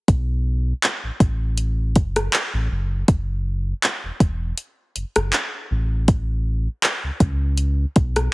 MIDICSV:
0, 0, Header, 1, 3, 480
1, 0, Start_track
1, 0, Tempo, 750000
1, 52, Time_signature, 4, 2, 24, 8
1, 5335, End_track
2, 0, Start_track
2, 0, Title_t, "Sub bass"
2, 0, Program_c, 0, 38
2, 53, Note_on_c, 0, 35, 109
2, 467, Note_off_c, 0, 35, 0
2, 662, Note_on_c, 0, 33, 47
2, 706, Note_off_c, 0, 33, 0
2, 770, Note_on_c, 0, 33, 98
2, 1255, Note_on_c, 0, 30, 95
2, 1264, Note_off_c, 0, 33, 0
2, 1461, Note_off_c, 0, 30, 0
2, 1623, Note_on_c, 0, 33, 83
2, 1718, Note_off_c, 0, 33, 0
2, 1735, Note_on_c, 0, 30, 107
2, 1941, Note_off_c, 0, 30, 0
2, 1974, Note_on_c, 0, 30, 96
2, 2388, Note_off_c, 0, 30, 0
2, 2584, Note_on_c, 0, 28, 48
2, 2627, Note_off_c, 0, 28, 0
2, 2691, Note_on_c, 0, 28, 92
2, 2899, Note_off_c, 0, 28, 0
2, 3174, Note_on_c, 0, 30, 47
2, 3225, Note_off_c, 0, 30, 0
2, 3304, Note_on_c, 0, 30, 89
2, 3399, Note_off_c, 0, 30, 0
2, 3654, Note_on_c, 0, 33, 106
2, 4274, Note_off_c, 0, 33, 0
2, 4503, Note_on_c, 0, 37, 50
2, 4547, Note_off_c, 0, 37, 0
2, 4610, Note_on_c, 0, 37, 96
2, 5025, Note_off_c, 0, 37, 0
2, 5096, Note_on_c, 0, 35, 97
2, 5301, Note_off_c, 0, 35, 0
2, 5335, End_track
3, 0, Start_track
3, 0, Title_t, "Drums"
3, 53, Note_on_c, 9, 36, 120
3, 53, Note_on_c, 9, 42, 73
3, 117, Note_off_c, 9, 36, 0
3, 117, Note_off_c, 9, 42, 0
3, 533, Note_on_c, 9, 42, 75
3, 535, Note_on_c, 9, 39, 114
3, 597, Note_off_c, 9, 42, 0
3, 599, Note_off_c, 9, 39, 0
3, 770, Note_on_c, 9, 36, 107
3, 770, Note_on_c, 9, 42, 62
3, 834, Note_off_c, 9, 36, 0
3, 834, Note_off_c, 9, 42, 0
3, 1008, Note_on_c, 9, 42, 73
3, 1072, Note_off_c, 9, 42, 0
3, 1252, Note_on_c, 9, 42, 56
3, 1254, Note_on_c, 9, 36, 103
3, 1316, Note_off_c, 9, 42, 0
3, 1318, Note_off_c, 9, 36, 0
3, 1383, Note_on_c, 9, 42, 57
3, 1385, Note_on_c, 9, 37, 94
3, 1447, Note_off_c, 9, 42, 0
3, 1449, Note_off_c, 9, 37, 0
3, 1492, Note_on_c, 9, 42, 68
3, 1494, Note_on_c, 9, 39, 121
3, 1556, Note_off_c, 9, 42, 0
3, 1558, Note_off_c, 9, 39, 0
3, 1972, Note_on_c, 9, 42, 68
3, 1973, Note_on_c, 9, 36, 124
3, 2036, Note_off_c, 9, 42, 0
3, 2037, Note_off_c, 9, 36, 0
3, 2453, Note_on_c, 9, 42, 75
3, 2455, Note_on_c, 9, 39, 121
3, 2517, Note_off_c, 9, 42, 0
3, 2519, Note_off_c, 9, 39, 0
3, 2690, Note_on_c, 9, 36, 105
3, 2690, Note_on_c, 9, 42, 63
3, 2754, Note_off_c, 9, 36, 0
3, 2754, Note_off_c, 9, 42, 0
3, 2928, Note_on_c, 9, 42, 76
3, 2992, Note_off_c, 9, 42, 0
3, 3172, Note_on_c, 9, 42, 60
3, 3236, Note_off_c, 9, 42, 0
3, 3301, Note_on_c, 9, 42, 57
3, 3303, Note_on_c, 9, 37, 98
3, 3365, Note_off_c, 9, 42, 0
3, 3367, Note_off_c, 9, 37, 0
3, 3409, Note_on_c, 9, 42, 67
3, 3411, Note_on_c, 9, 39, 123
3, 3473, Note_off_c, 9, 42, 0
3, 3475, Note_off_c, 9, 39, 0
3, 3891, Note_on_c, 9, 42, 70
3, 3893, Note_on_c, 9, 36, 121
3, 3955, Note_off_c, 9, 42, 0
3, 3957, Note_off_c, 9, 36, 0
3, 4372, Note_on_c, 9, 42, 77
3, 4374, Note_on_c, 9, 39, 122
3, 4436, Note_off_c, 9, 42, 0
3, 4438, Note_off_c, 9, 39, 0
3, 4610, Note_on_c, 9, 36, 103
3, 4610, Note_on_c, 9, 42, 62
3, 4674, Note_off_c, 9, 36, 0
3, 4674, Note_off_c, 9, 42, 0
3, 4848, Note_on_c, 9, 42, 73
3, 4912, Note_off_c, 9, 42, 0
3, 5093, Note_on_c, 9, 42, 54
3, 5095, Note_on_c, 9, 36, 107
3, 5157, Note_off_c, 9, 42, 0
3, 5159, Note_off_c, 9, 36, 0
3, 5223, Note_on_c, 9, 42, 59
3, 5225, Note_on_c, 9, 37, 94
3, 5287, Note_off_c, 9, 42, 0
3, 5289, Note_off_c, 9, 37, 0
3, 5335, End_track
0, 0, End_of_file